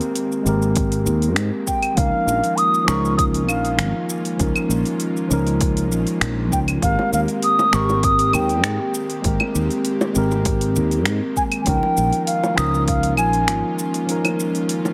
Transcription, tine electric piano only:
0, 0, Header, 1, 2, 480
1, 0, Start_track
1, 0, Tempo, 606061
1, 1562, Time_signature, 4, 2, 24, 8
1, 11827, End_track
2, 0, Start_track
2, 0, Title_t, "Tine electric piano"
2, 0, Program_c, 0, 4
2, 0, Control_c, 0, 64, 127
2, 0, Note_on_c, 0, 56, 73
2, 0, Note_on_c, 0, 60, 78
2, 0, Note_on_c, 0, 67, 75
2, 0, Note_on_c, 0, 70, 91
2, 327, Note_off_c, 0, 56, 0
2, 333, Note_off_c, 0, 60, 0
2, 339, Note_on_c, 0, 56, 93
2, 341, Note_off_c, 0, 67, 0
2, 347, Note_off_c, 0, 70, 0
2, 355, Note_on_c, 0, 60, 86
2, 370, Note_on_c, 0, 67, 88
2, 386, Note_on_c, 0, 70, 97
2, 1523, Note_off_c, 0, 56, 0
2, 1531, Note_off_c, 0, 60, 0
2, 1539, Note_off_c, 0, 67, 0
2, 1539, Note_on_c, 0, 53, 78
2, 1547, Note_off_c, 0, 70, 0
2, 1556, Note_on_c, 0, 61, 71
2, 1568, Note_on_c, 0, 63, 77
2, 1570, Control_c, 0, 64, 0
2, 1584, Note_on_c, 0, 70, 90
2, 1719, Control_c, 0, 64, 127
2, 2241, Note_off_c, 0, 53, 0
2, 2250, Note_on_c, 0, 53, 91
2, 2252, Note_off_c, 0, 61, 0
2, 2258, Note_off_c, 0, 63, 0
2, 2266, Note_off_c, 0, 70, 0
2, 2269, Note_on_c, 0, 61, 88
2, 2281, Note_on_c, 0, 63, 82
2, 2295, Note_on_c, 0, 70, 102
2, 3439, Note_off_c, 0, 53, 0
2, 3448, Note_off_c, 0, 61, 0
2, 3454, Note_off_c, 0, 63, 0
2, 3461, Note_off_c, 0, 70, 0
2, 3461, Note_on_c, 0, 53, 73
2, 3477, Note_on_c, 0, 61, 74
2, 3491, Note_on_c, 0, 63, 73
2, 3506, Note_on_c, 0, 70, 84
2, 4164, Note_off_c, 0, 53, 0
2, 4172, Note_off_c, 0, 61, 0
2, 4179, Note_off_c, 0, 63, 0
2, 4182, Note_on_c, 0, 53, 89
2, 4187, Note_off_c, 0, 70, 0
2, 4196, Note_on_c, 0, 61, 78
2, 4209, Note_on_c, 0, 63, 81
2, 4223, Note_on_c, 0, 70, 100
2, 5365, Note_off_c, 0, 53, 0
2, 5372, Note_off_c, 0, 61, 0
2, 5378, Note_off_c, 0, 63, 0
2, 5384, Note_on_c, 0, 56, 78
2, 5385, Note_off_c, 0, 70, 0
2, 5398, Note_on_c, 0, 60, 77
2, 5411, Control_c, 0, 64, 0
2, 5414, Note_on_c, 0, 67, 75
2, 5425, Note_on_c, 0, 70, 87
2, 5563, Control_c, 0, 64, 127
2, 6086, Note_off_c, 0, 56, 0
2, 6093, Note_off_c, 0, 60, 0
2, 6101, Note_off_c, 0, 67, 0
2, 6103, Note_on_c, 0, 56, 90
2, 6106, Note_off_c, 0, 70, 0
2, 6117, Note_on_c, 0, 60, 86
2, 6128, Note_on_c, 0, 67, 86
2, 6144, Note_on_c, 0, 70, 101
2, 7285, Note_off_c, 0, 56, 0
2, 7292, Note_off_c, 0, 60, 0
2, 7298, Note_off_c, 0, 67, 0
2, 7301, Note_on_c, 0, 56, 86
2, 7306, Note_off_c, 0, 70, 0
2, 7313, Note_on_c, 0, 60, 76
2, 7328, Note_on_c, 0, 67, 70
2, 7343, Note_on_c, 0, 70, 83
2, 8004, Note_off_c, 0, 56, 0
2, 8010, Note_off_c, 0, 60, 0
2, 8017, Note_off_c, 0, 67, 0
2, 8020, Note_on_c, 0, 56, 89
2, 8025, Note_off_c, 0, 70, 0
2, 8036, Note_on_c, 0, 60, 88
2, 8047, Note_on_c, 0, 67, 82
2, 8062, Note_on_c, 0, 70, 107
2, 9204, Note_off_c, 0, 56, 0
2, 9212, Note_off_c, 0, 60, 0
2, 9217, Note_off_c, 0, 67, 0
2, 9218, Note_on_c, 0, 53, 83
2, 9225, Note_off_c, 0, 70, 0
2, 9232, Note_on_c, 0, 61, 71
2, 9245, Note_on_c, 0, 63, 74
2, 9253, Control_c, 0, 64, 0
2, 9261, Note_on_c, 0, 70, 94
2, 9396, Control_c, 0, 64, 127
2, 9923, Note_off_c, 0, 53, 0
2, 9930, Note_off_c, 0, 61, 0
2, 9934, Note_on_c, 0, 53, 89
2, 9936, Note_off_c, 0, 63, 0
2, 9944, Note_off_c, 0, 70, 0
2, 9947, Note_on_c, 0, 61, 85
2, 9964, Note_on_c, 0, 63, 86
2, 9975, Note_on_c, 0, 70, 100
2, 11121, Note_off_c, 0, 53, 0
2, 11127, Note_off_c, 0, 61, 0
2, 11136, Note_off_c, 0, 63, 0
2, 11138, Note_on_c, 0, 53, 85
2, 11141, Note_off_c, 0, 70, 0
2, 11150, Note_on_c, 0, 61, 68
2, 11166, Note_on_c, 0, 63, 73
2, 11178, Note_on_c, 0, 70, 91
2, 11827, Note_off_c, 0, 53, 0
2, 11827, Note_off_c, 0, 61, 0
2, 11827, Note_off_c, 0, 63, 0
2, 11827, Note_off_c, 0, 70, 0
2, 11827, End_track
0, 0, End_of_file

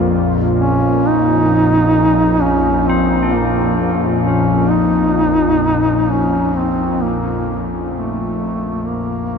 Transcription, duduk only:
0, 0, Header, 1, 2, 480
1, 0, Start_track
1, 0, Key_signature, -5, "minor"
1, 0, Tempo, 923077
1, 310, Time_signature, 4, 2, 24, 8
1, 4878, End_track
2, 0, Start_track
2, 0, Title_t, "Duduk"
2, 0, Program_c, 0, 69
2, 0, Note_on_c, 0, 58, 73
2, 52, Note_off_c, 0, 58, 0
2, 310, Note_on_c, 0, 61, 92
2, 553, Note_on_c, 0, 63, 114
2, 561, Note_off_c, 0, 61, 0
2, 1258, Note_on_c, 0, 61, 90
2, 1266, Note_off_c, 0, 63, 0
2, 1495, Note_on_c, 0, 60, 73
2, 1503, Note_off_c, 0, 61, 0
2, 1735, Note_on_c, 0, 58, 73
2, 1743, Note_off_c, 0, 60, 0
2, 2103, Note_off_c, 0, 58, 0
2, 2204, Note_on_c, 0, 61, 83
2, 2444, Note_on_c, 0, 63, 100
2, 2452, Note_off_c, 0, 61, 0
2, 3178, Note_on_c, 0, 61, 95
2, 3186, Note_off_c, 0, 63, 0
2, 3412, Note_on_c, 0, 60, 81
2, 3420, Note_off_c, 0, 61, 0
2, 3657, Note_on_c, 0, 58, 87
2, 3665, Note_off_c, 0, 60, 0
2, 4024, Note_off_c, 0, 58, 0
2, 4131, Note_on_c, 0, 57, 75
2, 4606, Note_on_c, 0, 58, 86
2, 4614, Note_off_c, 0, 57, 0
2, 4878, Note_off_c, 0, 58, 0
2, 4878, End_track
0, 0, End_of_file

